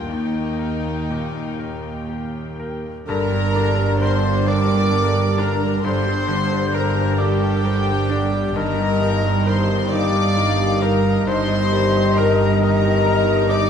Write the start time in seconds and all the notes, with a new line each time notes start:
Already playing: D3 A#3 G4 A#4 G5
0.09 D#2 D#4 F5
0.59 A#4
1.10 A#2
1.59 A#4
2.09 G4
2.60 A#4
3.07 G1 G2 D3 D4 G4 A#4 D5 A#5
3.32 G3
3.56 D3 D4
3.78 G3
4.02 D3 A#4 C5 C6
4.25 G3
4.48 D3 A#4 D5 D6
4.72 G3
4.93 D3 A#4
5.17 G3
5.38 D3 D4 A#4 A#5
5.63 G3
5.83 G1 G2 D3 D4 G4 C5 C6
6.07 G3
6.28 D3
6.52 G3
6.74 D3 A#4 A#5
6.98 G3
7.18 D3 G4 A#4 D5 G5
7.42 G3
7.65 D3 A#4 C5
7.90 G3
8.09 D3 D4 D5
8.34 G3
8.55 G1 G2 D#3 D#4 G4 A#4 D#5 A#5
8.79 G3
9.01 D#3 D#4
9.24 G3
9.47 D#3 A#4 C5 C6
9.70 G3
9.92 D#3 D#4 D5 F5 D6
10.15 G3
10.37 D#3 A#4
10.60 G3
10.82 D#3 D#4 A#4 A#5
11.04 G3
11.27 G1 G2 D#3 D#4 G4 C5 D#5 C6
11.50 G3
11.72 D#3 G3
11.94 G3
12.18 D#3 A#4 A#5
12.40 G3
12.62 D#3 A#4 D#5 A#5
12.84 G3
13.06 D#3 A#4
13.27 G3
13.48 D#3 D#4 D5 D6